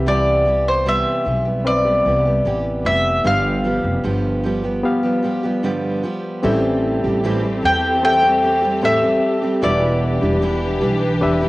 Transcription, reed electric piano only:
0, 0, Header, 1, 2, 480
1, 0, Start_track
1, 0, Key_signature, 0, "minor"
1, 0, Tempo, 796813
1, 39, Time_signature, 4, 2, 24, 8
1, 6920, End_track
2, 0, Start_track
2, 0, Title_t, "Reed electric piano"
2, 0, Program_c, 0, 4
2, 0, Control_c, 0, 64, 127
2, 0, Note_on_c, 0, 60, 72
2, 0, Note_on_c, 0, 71, 68
2, 0, Note_on_c, 0, 76, 86
2, 687, Note_off_c, 0, 60, 0
2, 689, Note_off_c, 0, 71, 0
2, 693, Note_off_c, 0, 76, 0
2, 992, Note_on_c, 0, 60, 75
2, 999, Note_on_c, 0, 71, 68
2, 1004, Note_on_c, 0, 76, 68
2, 1887, Note_off_c, 0, 60, 0
2, 1891, Note_off_c, 0, 71, 0
2, 1893, Note_off_c, 0, 76, 0
2, 1956, Note_on_c, 0, 59, 69
2, 1961, Note_on_c, 0, 67, 57
2, 1969, Control_c, 0, 64, 0
2, 1969, Note_on_c, 0, 77, 74
2, 2074, Control_c, 0, 64, 127
2, 2849, Note_off_c, 0, 59, 0
2, 2852, Note_off_c, 0, 67, 0
2, 2856, Note_off_c, 0, 77, 0
2, 2912, Note_on_c, 0, 59, 82
2, 2919, Note_on_c, 0, 67, 78
2, 2923, Note_on_c, 0, 77, 83
2, 3807, Note_off_c, 0, 59, 0
2, 3811, Note_off_c, 0, 67, 0
2, 3813, Note_off_c, 0, 77, 0
2, 3871, Note_on_c, 0, 60, 72
2, 3875, Note_on_c, 0, 67, 70
2, 3878, Note_on_c, 0, 69, 68
2, 3882, Note_on_c, 0, 76, 83
2, 3889, Control_c, 0, 64, 0
2, 3989, Control_c, 0, 64, 127
2, 4767, Note_off_c, 0, 60, 0
2, 4769, Note_off_c, 0, 67, 0
2, 4770, Note_off_c, 0, 69, 0
2, 4773, Note_off_c, 0, 76, 0
2, 4837, Note_on_c, 0, 60, 73
2, 4841, Note_on_c, 0, 67, 61
2, 4846, Note_on_c, 0, 69, 64
2, 4848, Note_on_c, 0, 76, 79
2, 5285, Note_off_c, 0, 60, 0
2, 5287, Note_off_c, 0, 67, 0
2, 5289, Note_off_c, 0, 69, 0
2, 5290, Note_off_c, 0, 76, 0
2, 5317, Note_on_c, 0, 60, 64
2, 5321, Note_on_c, 0, 67, 63
2, 5325, Note_on_c, 0, 69, 69
2, 5329, Note_on_c, 0, 76, 76
2, 5764, Note_off_c, 0, 60, 0
2, 5767, Note_off_c, 0, 67, 0
2, 5769, Note_off_c, 0, 69, 0
2, 5770, Note_off_c, 0, 76, 0
2, 5796, Note_on_c, 0, 62, 67
2, 5802, Note_on_c, 0, 65, 46
2, 5804, Note_on_c, 0, 71, 57
2, 5807, Note_on_c, 0, 76, 71
2, 5810, Control_c, 0, 64, 0
2, 5840, Note_on_c, 0, 67, 56
2, 5841, Note_off_c, 0, 65, 0
2, 5899, Control_c, 0, 64, 127
2, 6689, Note_off_c, 0, 62, 0
2, 6693, Note_off_c, 0, 71, 0
2, 6695, Note_off_c, 0, 76, 0
2, 6711, Note_off_c, 0, 67, 0
2, 6754, Note_on_c, 0, 62, 81
2, 6756, Note_on_c, 0, 67, 75
2, 6760, Note_on_c, 0, 71, 83
2, 6765, Note_on_c, 0, 76, 96
2, 6920, Note_off_c, 0, 62, 0
2, 6920, Note_off_c, 0, 67, 0
2, 6920, Note_off_c, 0, 71, 0
2, 6920, Note_off_c, 0, 76, 0
2, 6920, End_track
0, 0, End_of_file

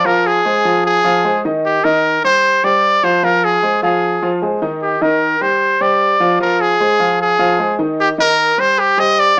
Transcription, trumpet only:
0, 0, Header, 1, 2, 480
1, 0, Start_track
1, 0, Key_signature, -3, "minor"
1, 0, Tempo, 396563
1, 67, Time_signature, 4, 2, 24, 8
1, 11377, End_track
2, 0, Start_track
2, 0, Title_t, "Trumpet"
2, 0, Program_c, 0, 56
2, 68, Note_on_c, 0, 70, 97
2, 321, Note_on_c, 0, 68, 107
2, 339, Note_off_c, 0, 70, 0
2, 1028, Note_off_c, 0, 68, 0
2, 1035, Note_on_c, 0, 68, 101
2, 1704, Note_off_c, 0, 68, 0
2, 2003, Note_on_c, 0, 67, 91
2, 2228, Note_on_c, 0, 70, 109
2, 2246, Note_off_c, 0, 67, 0
2, 2709, Note_off_c, 0, 70, 0
2, 2717, Note_on_c, 0, 72, 102
2, 3195, Note_on_c, 0, 74, 99
2, 3213, Note_off_c, 0, 72, 0
2, 3679, Note_on_c, 0, 72, 88
2, 3697, Note_off_c, 0, 74, 0
2, 3924, Note_on_c, 0, 70, 96
2, 3942, Note_off_c, 0, 72, 0
2, 4169, Note_on_c, 0, 68, 103
2, 4187, Note_off_c, 0, 70, 0
2, 4625, Note_off_c, 0, 68, 0
2, 4632, Note_on_c, 0, 68, 84
2, 5221, Note_off_c, 0, 68, 0
2, 5834, Note_on_c, 0, 67, 82
2, 6074, Note_on_c, 0, 70, 101
2, 6093, Note_off_c, 0, 67, 0
2, 6560, Note_on_c, 0, 72, 92
2, 6578, Note_off_c, 0, 70, 0
2, 7037, Note_on_c, 0, 74, 93
2, 7056, Note_off_c, 0, 72, 0
2, 7754, Note_off_c, 0, 74, 0
2, 7761, Note_on_c, 0, 70, 96
2, 7999, Note_on_c, 0, 68, 109
2, 8017, Note_off_c, 0, 70, 0
2, 8714, Note_off_c, 0, 68, 0
2, 8734, Note_on_c, 0, 68, 97
2, 9393, Note_off_c, 0, 68, 0
2, 9685, Note_on_c, 0, 67, 96
2, 9789, Note_off_c, 0, 67, 0
2, 9926, Note_on_c, 0, 70, 117
2, 10405, Note_on_c, 0, 72, 104
2, 10423, Note_off_c, 0, 70, 0
2, 10643, Note_on_c, 0, 67, 101
2, 10661, Note_off_c, 0, 72, 0
2, 10885, Note_on_c, 0, 75, 101
2, 10903, Note_off_c, 0, 67, 0
2, 11126, Note_on_c, 0, 74, 106
2, 11144, Note_off_c, 0, 75, 0
2, 11377, Note_off_c, 0, 74, 0
2, 11377, End_track
0, 0, End_of_file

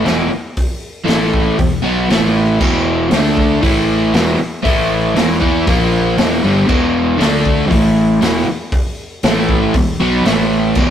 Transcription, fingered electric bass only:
0, 0, Header, 1, 2, 480
1, 0, Start_track
1, 0, Key_signature, 1, "minor"
1, 0, Tempo, 509771
1, 535, Time_signature, 4, 2, 24, 8
1, 10264, End_track
2, 0, Start_track
2, 0, Title_t, "Fingered electric bass"
2, 0, Program_c, 0, 33
2, 37, Note_on_c, 0, 28, 92
2, 269, Note_off_c, 0, 28, 0
2, 1020, Note_on_c, 0, 33, 94
2, 1464, Note_off_c, 0, 33, 0
2, 1499, Note_on_c, 0, 28, 82
2, 1720, Note_off_c, 0, 28, 0
2, 1735, Note_on_c, 0, 35, 101
2, 1958, Note_off_c, 0, 35, 0
2, 1980, Note_on_c, 0, 33, 100
2, 2424, Note_off_c, 0, 33, 0
2, 2460, Note_on_c, 0, 28, 98
2, 2904, Note_off_c, 0, 28, 0
2, 2935, Note_on_c, 0, 38, 86
2, 3382, Note_off_c, 0, 38, 0
2, 3421, Note_on_c, 0, 33, 95
2, 3865, Note_off_c, 0, 33, 0
2, 3885, Note_on_c, 0, 28, 99
2, 4113, Note_off_c, 0, 28, 0
2, 4383, Note_on_c, 0, 33, 102
2, 4826, Note_off_c, 0, 33, 0
2, 4863, Note_on_c, 0, 28, 96
2, 5083, Note_off_c, 0, 28, 0
2, 5105, Note_on_c, 0, 40, 97
2, 5324, Note_off_c, 0, 40, 0
2, 5348, Note_on_c, 0, 34, 102
2, 5788, Note_off_c, 0, 34, 0
2, 5822, Note_on_c, 0, 28, 104
2, 6042, Note_off_c, 0, 28, 0
2, 6062, Note_on_c, 0, 31, 92
2, 6282, Note_off_c, 0, 31, 0
2, 6303, Note_on_c, 0, 28, 93
2, 6746, Note_off_c, 0, 28, 0
2, 6772, Note_on_c, 0, 38, 85
2, 7220, Note_off_c, 0, 38, 0
2, 7256, Note_on_c, 0, 33, 96
2, 7702, Note_off_c, 0, 33, 0
2, 7727, Note_on_c, 0, 28, 99
2, 7954, Note_off_c, 0, 28, 0
2, 8693, Note_on_c, 0, 33, 93
2, 9141, Note_off_c, 0, 33, 0
2, 9413, Note_on_c, 0, 35, 109
2, 9639, Note_off_c, 0, 35, 0
2, 9650, Note_on_c, 0, 33, 97
2, 10101, Note_off_c, 0, 33, 0
2, 10137, Note_on_c, 0, 28, 101
2, 10264, Note_off_c, 0, 28, 0
2, 10264, End_track
0, 0, End_of_file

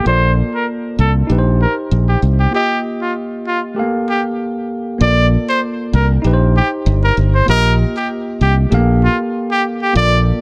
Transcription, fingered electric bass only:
0, 0, Header, 1, 2, 480
1, 0, Start_track
1, 0, Key_signature, -2, "major"
1, 0, Tempo, 618557
1, 45, Time_signature, 4, 2, 24, 8
1, 8078, End_track
2, 0, Start_track
2, 0, Title_t, "Fingered electric bass"
2, 0, Program_c, 0, 33
2, 46, Note_on_c, 0, 34, 93
2, 317, Note_off_c, 0, 34, 0
2, 765, Note_on_c, 0, 36, 86
2, 944, Note_off_c, 0, 36, 0
2, 1005, Note_on_c, 0, 34, 97
2, 1277, Note_off_c, 0, 34, 0
2, 1485, Note_on_c, 0, 34, 86
2, 1664, Note_off_c, 0, 34, 0
2, 1725, Note_on_c, 0, 36, 94
2, 1904, Note_off_c, 0, 36, 0
2, 3885, Note_on_c, 0, 34, 100
2, 4156, Note_off_c, 0, 34, 0
2, 4605, Note_on_c, 0, 36, 102
2, 4783, Note_off_c, 0, 36, 0
2, 4845, Note_on_c, 0, 34, 106
2, 5116, Note_off_c, 0, 34, 0
2, 5325, Note_on_c, 0, 31, 102
2, 5503, Note_off_c, 0, 31, 0
2, 5565, Note_on_c, 0, 31, 102
2, 5744, Note_off_c, 0, 31, 0
2, 5805, Note_on_c, 0, 34, 114
2, 6076, Note_off_c, 0, 34, 0
2, 6525, Note_on_c, 0, 36, 85
2, 6704, Note_off_c, 0, 36, 0
2, 6765, Note_on_c, 0, 34, 106
2, 7036, Note_off_c, 0, 34, 0
2, 7725, Note_on_c, 0, 34, 104
2, 7996, Note_off_c, 0, 34, 0
2, 8078, End_track
0, 0, End_of_file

